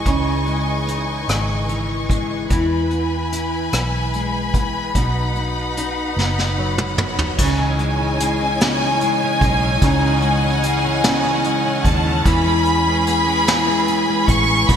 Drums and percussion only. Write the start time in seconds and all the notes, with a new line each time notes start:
0.06 kick, closed hi-hat
0.46 closed hi-hat
0.88 closed hi-hat
1.29 cross-stick, closed hi-hat
1.69 closed hi-hat
2.10 kick, closed hi-hat
2.50 kick, closed hi-hat
2.90 closed hi-hat
3.32 closed hi-hat
3.73 cross-stick, closed hi-hat
4.13 closed hi-hat
4.54 kick, closed hi-hat
4.95 kick, closed hi-hat
5.35 closed hi-hat
5.77 closed hi-hat
6.19 snare
6.39 snare
6.78 mid tom
6.98 mid tom
7.19 floor tom
7.38 kick, crash
7.79 closed hi-hat
8.20 closed hi-hat
8.61 snare, closed hi-hat
9.01 closed hi-hat
9.41 kick, closed hi-hat
9.82 kick, closed hi-hat
10.22 closed hi-hat
10.63 closed hi-hat
11.04 snare, closed hi-hat
11.44 closed hi-hat
11.85 kick, closed hi-hat
12.25 kick, closed hi-hat
12.65 closed hi-hat
13.07 closed hi-hat
13.47 snare, closed hi-hat
13.88 closed hi-hat
14.28 kick, closed hi-hat
14.69 kick, closed hi-hat